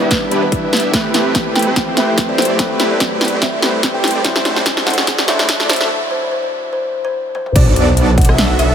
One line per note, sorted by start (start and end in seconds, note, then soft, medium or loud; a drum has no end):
0.00 0.29 G3 loud
0.00 0.29 B3 medium
0.00 0.31 D4 medium
0.00 0.30 D4 medium
0.00 0.32 E4 medium
0.00 0.29 E4 medium
0.00 0.30 G4 medium
0.00 0.33 B4 loud
0.00 0.30 E5 medium
0.00 riser medium
0.11 0.40 B4 medium
0.11 kick loud
0.11 snare medium
0.11 closed hi-hat medium
0.29 0.90 G3 medium
0.29 0.44 B3 medium
0.29 0.91 D4 medium
0.29 0.44 D4 medium
0.29 0.44 E4 medium
0.29 0.92 E4 medium
0.29 0.44 G4 medium
0.29 0.44 B4 loud
0.29 0.92 B4 loud
0.29 closed hi-hat medium
0.43 0.58 B4 medium
0.52 0.71 B3 medium
0.52 0.70 D4 medium
0.52 0.71 E4 medium
0.52 0.71 G4 medium
0.52 0.71 E5 medium
0.52 kick loud
0.52 closed hi-hat medium
0.73 0.91 B3 medium
0.73 0.91 D4 medium
0.73 0.91 E4 medium
0.73 0.91 G4 medium
0.73 0.98 B4 medium
0.73 0.91 E5 loud
0.73 snare medium
0.73 closed hi-hat soft
0.77 closed hi-hat medium
0.80 closed hi-hat medium
0.91 1.94 A3 loud
0.91 1.12 A3 medium
0.91 1.94 C4 medium
0.91 1.12 C4 medium
0.91 1.12 E4 medium
0.91 1.12 G4 medium
0.91 1.95 G4 medium
0.91 1.12 B4 loud
0.91 kick medium
0.91 snare medium
0.91 closed hi-hat medium
0.95 1.96 B4 loud
1.14 1.64 A3 loud
1.14 1.64 C4 medium
1.14 1.64 E4 medium
1.14 1.64 G4 medium
1.14 1.64 B4 loud
1.14 snare medium
1.14 closed hi-hat medium
1.35 kick loud
1.35 snare medium
1.35 closed hi-hat medium
1.56 1.72 G5 medium
1.56 snare medium
1.56 closed hi-hat soft
1.59 closed hi-hat medium
1.62 closed hi-hat medium
1.67 1.95 A3 medium
1.67 1.95 C4 medium
1.67 1.95 E4 medium
1.67 1.95 G4 medium
1.67 1.95 C5 medium
1.76 kick loud
1.76 snare medium
1.76 closed hi-hat medium
1.95 2.56 A3 loud
1.95 2.26 A3 medium
1.95 2.56 C4 medium
1.95 2.26 C4 medium
1.95 2.26 E4 medium
1.95 2.26 G4 medium
1.95 2.57 G4 medium
1.95 2.26 C5 medium
1.95 2.04 E5 medium
1.95 snare medium
1.95 closed hi-hat medium
1.99 2.58 B4 loud
2.08 2.14 E5 medium
2.18 kick medium
2.18 snare medium
2.18 closed hi-hat medium
2.29 2.47 A3 medium
2.29 2.47 C4 medium
2.29 2.47 E4 medium
2.29 2.47 G4 medium
2.29 2.47 C5 loud
2.29 2.36 D5 medium
2.38 2.70 C5 medium
2.38 snare medium
2.38 closed hi-hat soft
2.42 closed hi-hat medium
2.45 closed hi-hat medium
2.49 2.57 A3 medium
2.49 2.57 C4 medium
2.49 2.57 E4 medium
2.49 2.57 G4 medium
2.49 2.57 D5 medium
2.57 3.59 A3 medium
2.57 3.60 C4 medium
2.57 3.61 G4 medium
2.57 kick loud
2.57 snare medium
2.57 closed hi-hat medium
2.61 3.61 B4 loud
2.80 3.30 A3 loud
2.80 3.30 C4 medium
2.80 3.30 E4 medium
2.80 3.30 G4 medium
2.80 3.30 B4 loud
2.80 snare medium
2.80 closed hi-hat medium
2.91 2.97 D5 medium
3.00 kick loud
3.00 snare medium
3.00 closed hi-hat medium
3.21 3.28 D5 medium
3.21 snare medium
3.21 closed hi-hat soft
3.25 closed hi-hat medium
3.28 closed hi-hat medium
3.32 3.61 A3 medium
3.32 3.61 C4 medium
3.32 3.61 E4 medium
3.32 3.61 G4 medium
3.32 3.61 C5 medium
3.32 3.38 D5 medium
3.42 3.49 E5 medium
3.42 kick loud
3.42 snare medium
3.42 closed hi-hat medium
3.53 3.59 E5 medium
3.60 4.21 A3 medium
3.60 3.92 A3 medium
3.60 4.22 C4 medium
3.60 3.92 C4 medium
3.60 3.92 E4 medium
3.60 3.92 G4 medium
3.60 4.23 G4 medium
3.60 3.92 C5 medium
3.60 snare medium
3.60 closed hi-hat medium
3.64 4.23 B4 loud
3.83 kick loud
3.83 snare medium
3.83 closed hi-hat medium
3.94 4.12 A3 medium
3.94 4.12 C4 medium
3.94 4.12 E4 medium
3.94 4.12 G4 medium
3.94 4.12 C5 loud
3.94 4.24 G5 medium
4.04 snare medium
4.04 closed hi-hat soft
4.08 closed hi-hat medium
4.11 closed hi-hat medium
4.15 4.22 A3 medium
4.15 4.22 C4 medium
4.15 4.22 E4 medium
4.15 4.22 G4 medium
4.15 4.22 D5 medium
4.23 5.25 F#3 medium
4.23 5.25 D4 medium
4.23 4.43 E4 medium
4.23 5.26 E4 medium
4.23 4.43 F#4 medium
4.23 5.27 C5 loud
4.23 kick loud
4.23 snare medium
4.23 closed hi-hat medium
4.36 snare medium
4.45 4.95 A3 loud
4.45 4.95 D4 medium
4.45 4.95 E4 medium
4.45 4.95 F#4 medium
4.45 4.95 C5 loud
4.45 snare medium
4.45 closed hi-hat medium
4.56 snare medium
4.66 kick loud
4.66 snare medium
4.66 closed hi-hat medium
4.77 snare medium
4.86 5.03 F#5 medium
4.86 snare medium
4.86 closed hi-hat soft
4.90 closed hi-hat medium
4.94 closed hi-hat medium
4.98 5.26 A3 medium
4.98 5.26 D4 medium
4.98 5.26 E4 medium
4.98 5.26 F#4 medium
4.98 5.26 D5 medium
4.98 snare medium
5.07 kick loud
5.07 snare loud
5.07 closed hi-hat medium
5.18 snare medium
5.26 5.87 F#3 loud
5.26 5.57 A3 medium
5.26 5.87 D4 medium
5.26 5.57 D4 medium
5.26 5.57 E4 medium
5.26 5.88 E4 medium
5.26 5.57 F#4 medium
5.26 5.89 C5 loud
5.26 5.57 D5 medium
5.26 5.35 E5 medium
5.26 snare medium
5.26 closed hi-hat medium
5.39 5.45 E5 medium
5.39 snare medium
5.49 kick loud
5.49 snare loud
5.49 closed hi-hat medium
5.60 5.78 A3 medium
5.60 5.78 D4 medium
5.60 5.78 E4 medium
5.60 5.78 F#4 medium
5.60 5.67 D5 medium
5.60 5.78 D5 loud
5.60 snare medium
5.69 6.01 C5 medium
5.69 snare loud
5.69 closed hi-hat soft
5.73 closed hi-hat medium
5.76 closed hi-hat medium
5.80 5.88 A3 medium
5.80 5.88 D4 medium
5.80 5.88 E4 medium
5.80 5.88 F#4 medium
5.80 5.88 E5 medium
5.80 snare medium
6.11 6.18 C5 medium
6.22 6.28 C5 medium
6.31 6.39 C5 medium
6.43 6.49 C5 medium
6.73 7.02 C5 medium
7.05 7.20 C5 loud
7.35 7.56 C5 medium
7.35 high tom medium
7.46 mid tom medium
7.56 7.74 B1 loud
7.56 7.74 B3 loud
7.56 7.74 D4 medium
7.56 7.74 F#4 medium
7.56 7.74 A4 medium
7.56 7.74 D5 loud
7.56 kick loud
7.56 closed hi-hat medium
7.56 crash loud
7.56 sub drop medium
7.76 8.27 B1 loud
7.76 8.26 B3 loud
7.76 8.26 D4 medium
7.76 8.26 F#4 medium
7.76 8.26 A4 medium
7.76 8.26 D5 loud
7.76 closed hi-hat medium
7.97 closed hi-hat medium
8.18 8.34 F#5 medium
8.18 kick loud
8.18 closed hi-hat medium
8.21 closed hi-hat medium
8.25 closed hi-hat medium
8.29 8.57 B1 loud
8.29 8.57 B3 medium
8.29 8.57 D4 medium
8.29 8.57 F#4 medium
8.29 8.57 A4 medium
8.29 8.57 E5 medium
8.29 cross-stick medium
8.38 snare loud
8.38 closed hi-hat medium
8.59 8.75 B1 loud
8.59 8.75 B3 medium
8.59 8.75 D4 medium
8.59 8.75 F#4 medium
8.59 8.75 A4 medium
8.59 8.66 E5 medium
8.59 8.75 E5 medium
8.59 closed hi-hat medium
8.70 8.75 E5 medium